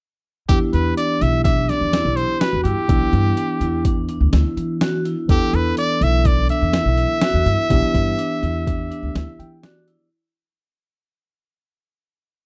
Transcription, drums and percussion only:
0.49 kick, closed hi-hat
0.73 closed hi-hat
0.97 closed hi-hat
1.21 closed hi-hat
1.45 kick, snare, closed hi-hat
1.69 snare, closed hi-hat
1.93 snare, closed hi-hat
2.17 closed hi-hat
2.41 snare, closed hi-hat
2.65 closed hi-hat
2.89 kick, closed hi-hat
3.13 closed hi-hat
3.37 closed hi-hat
3.61 closed hi-hat
3.85 kick, closed hi-hat
4.09 closed hi-hat
4.33 snare, closed hi-hat
4.57 closed hi-hat
4.81 snare, closed hi-hat
5.05 closed hi-hat
5.29 kick, closed hi-hat
5.53 closed hi-hat
5.77 closed hi-hat
6.01 closed hi-hat
6.25 kick, closed hi-hat
6.49 closed hi-hat
6.73 snare, closed hi-hat
6.98 closed hi-hat
7.22 snare, closed hi-hat
7.46 closed hi-hat
7.70 kick, closed hi-hat
7.95 kick, closed hi-hat
8.19 closed hi-hat
8.43 closed hi-hat
8.67 kick, closed hi-hat
8.92 closed hi-hat
9.15 snare, closed hi-hat
9.40 closed hi-hat
9.63 snare, closed hi-hat
9.88 closed hi-hat

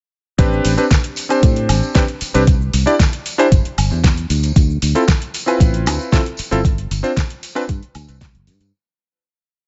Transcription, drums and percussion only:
0.39 kick, closed hi-hat, tambourine, shaker
0.53 shaker
0.64 open hi-hat, tambourine, shaker
0.78 closed hi-hat, tambourine, shaker
0.91 kick, snare, closed hi-hat, tambourine, shaker
1.04 closed hi-hat, shaker
1.16 open hi-hat, tambourine, shaker
1.30 closed hi-hat, tambourine, high woodblock, shaker
1.43 kick, closed hi-hat, tambourine, shaker
1.56 closed hi-hat, shaker
1.69 open hi-hat, tambourine, high woodblock, shaker
1.83 tambourine, shaker
1.95 kick, snare, closed hi-hat, tambourine, shaker
2.08 closed hi-hat, shaker
2.21 open hi-hat, tambourine, shaker
2.35 closed hi-hat, tambourine, shaker
2.47 kick, closed hi-hat, tambourine, shaker
2.62 shaker
2.73 open hi-hat, tambourine, shaker
2.87 closed hi-hat, tambourine, shaker
3.00 kick, snare, closed hi-hat, tambourine, shaker
3.13 closed hi-hat, shaker
3.26 open hi-hat, tambourine, shaker
3.39 closed hi-hat, tambourine, high woodblock, shaker
3.52 kick, closed hi-hat, tambourine, shaker
3.65 closed hi-hat, shaker
3.78 open hi-hat, tambourine, high woodblock, shaker
3.90 tambourine, shaker
4.04 kick, snare, closed hi-hat, tambourine, shaker
4.18 closed hi-hat, shaker
4.30 open hi-hat, tambourine, shaker
4.43 closed hi-hat, tambourine, shaker
4.56 kick, closed hi-hat, tambourine, shaker
4.71 shaker
4.82 open hi-hat, tambourine, shaker
4.95 closed hi-hat, tambourine, shaker
5.07 kick, snare, closed hi-hat, tambourine, shaker
5.22 closed hi-hat, shaker
5.34 open hi-hat, tambourine, shaker
5.47 closed hi-hat, tambourine, high woodblock, shaker
5.60 kick, closed hi-hat, tambourine, shaker
5.74 closed hi-hat, shaker
5.86 open hi-hat, tambourine, high woodblock, shaker
5.99 tambourine, shaker
6.11 kick, snare, closed hi-hat, tambourine, shaker
6.26 closed hi-hat, shaker
6.37 open hi-hat, tambourine, shaker
6.52 closed hi-hat, shaker
6.64 kick, closed hi-hat, tambourine, shaker
6.78 closed hi-hat, shaker
6.91 open hi-hat, tambourine, shaker
7.04 closed hi-hat, tambourine, shaker
7.17 kick, snare, closed hi-hat, tambourine, shaker
7.30 closed hi-hat, shaker
7.43 open hi-hat, tambourine, shaker
7.56 closed hi-hat, tambourine, high woodblock, shaker
7.68 kick, closed hi-hat, tambourine, shaker
7.83 closed hi-hat, shaker
7.95 open hi-hat, tambourine, high woodblock, shaker
8.09 closed hi-hat, tambourine, shaker
8.20 kick, snare, closed hi-hat, tambourine, shaker
8.35 closed hi-hat, shaker
8.47 open hi-hat, tambourine, shaker
8.60 closed hi-hat, tambourine, shaker

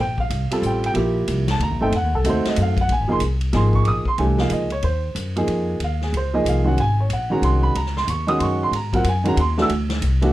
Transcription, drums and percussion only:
0.18 kick
0.30 hi-hat pedal, ride
0.51 ride
0.63 hi-hat pedal
0.84 ride
0.95 ride
1.28 hi-hat pedal, ride
1.48 snare, ride
1.60 ride
1.92 ride
2.25 hi-hat pedal, ride
2.45 snare, ride
2.56 hi-hat pedal, ride
2.77 kick, ride
2.89 ride
3.20 hi-hat pedal, ride
3.41 ride
3.53 snare, ride
3.73 kick
3.85 ride
4.05 kick
4.18 ride
4.38 snare
4.50 hi-hat pedal, ride
4.70 ride
4.83 ride
5.16 hi-hat pedal, ride
5.36 ride
5.48 ride
5.80 ride
6.01 snare
6.14 ride
6.46 hi-hat pedal, ride
6.78 ride
7.10 hi-hat pedal, ride
7.43 ride
7.75 ride
7.86 snare
7.97 snare
8.08 hi-hat pedal, ride
8.28 ride
8.40 ride
8.73 ride
8.93 kick, ride
9.04 hi-hat pedal, ride
9.25 ride
9.37 ride
9.58 snare
9.69 ride
9.90 snare, ride
10.02 hi-hat pedal, ride
10.22 ride

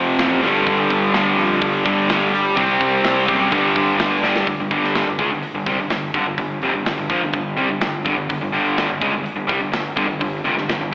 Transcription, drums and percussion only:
0.19 snare, open hi-hat
0.43 open hi-hat
0.67 kick, open hi-hat
0.90 kick, open hi-hat
1.14 snare, open hi-hat
1.38 open hi-hat
1.61 kick, open hi-hat
1.86 kick, open hi-hat
2.10 snare, open hi-hat
2.34 open hi-hat
2.57 kick, open hi-hat
2.81 kick, open hi-hat
3.04 snare, open hi-hat
3.28 kick
3.52 kick, open hi-hat
3.76 kick, open hi-hat
4.00 snare, open hi-hat
4.24 snare
4.36 snare
4.47 kick, open hi-hat
4.71 kick, open hi-hat
4.84 snare
4.95 snare, open hi-hat
5.19 kick, open hi-hat
5.43 open hi-hat
5.66 kick, open hi-hat
5.90 snare, open hi-hat
6.14 kick, open hi-hat
6.38 kick, open hi-hat
6.62 open hi-hat
6.86 snare, open hi-hat
7.09 kick, open hi-hat
7.33 kick, open hi-hat
7.57 open hi-hat
7.81 snare, open hi-hat
8.06 kick, open hi-hat
8.30 kick, open hi-hat
8.54 open hi-hat
8.78 snare, open hi-hat
9.02 kick, open hi-hat
9.26 open hi-hat
9.49 kick, open hi-hat
9.73 snare, open hi-hat
9.97 kick, open hi-hat
10.21 kick, open hi-hat
10.45 open hi-hat
10.57 snare
10.69 snare, open hi-hat

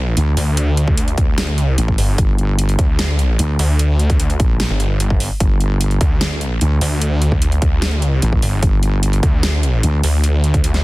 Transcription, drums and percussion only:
0.17 closed hi-hat
0.37 open hi-hat
0.57 closed hi-hat
0.77 closed hi-hat
0.88 kick
0.97 closed hi-hat
1.08 closed hi-hat
1.18 kick, closed hi-hat
1.38 snare, closed hi-hat
1.58 closed hi-hat
1.78 closed hi-hat
1.88 kick
1.98 open hi-hat
2.18 kick, closed hi-hat
2.38 closed hi-hat
2.59 closed hi-hat
2.69 closed hi-hat
2.79 kick, closed hi-hat
2.99 snare, closed hi-hat
3.19 closed hi-hat
3.39 closed hi-hat
3.59 open hi-hat
3.79 closed hi-hat
3.99 closed hi-hat
4.10 kick, closed hi-hat
4.20 closed hi-hat
4.30 closed hi-hat
4.40 kick, closed hi-hat
4.60 snare, closed hi-hat
4.80 closed hi-hat
5.00 closed hi-hat
5.10 kick
5.20 open hi-hat
5.40 kick, closed hi-hat
5.61 closed hi-hat
5.81 closed hi-hat
5.91 closed hi-hat
6.01 kick, closed hi-hat
6.21 snare, closed hi-hat
6.41 closed hi-hat
6.61 closed hi-hat
6.81 open hi-hat
7.01 closed hi-hat
7.22 closed hi-hat
7.32 kick
7.42 closed hi-hat
7.52 closed hi-hat
7.62 kick, closed hi-hat
7.82 snare, closed hi-hat
8.02 closed hi-hat
8.22 closed hi-hat
8.33 kick
8.42 open hi-hat
8.63 kick, closed hi-hat
8.83 closed hi-hat
9.03 closed hi-hat
9.13 closed hi-hat
9.23 kick, closed hi-hat
9.43 snare, closed hi-hat
9.63 closed hi-hat
9.83 closed hi-hat
10.04 open hi-hat
10.24 closed hi-hat
10.44 closed hi-hat
10.54 kick, closed hi-hat
10.64 closed hi-hat
10.74 snare, closed hi-hat

